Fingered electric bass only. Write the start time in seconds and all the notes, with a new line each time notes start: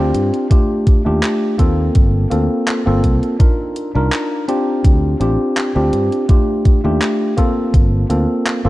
Already playing: D2
0.15 G2
1.06 D#2
1.59 D#2
1.95 G1
2.32 D2
2.87 G1
3.04 C2
3.95 C2
4.85 D2
5.20 A1
5.76 D2
5.93 G2
6.84 D#2
7.74 G1
8.10 D2
8.65 G1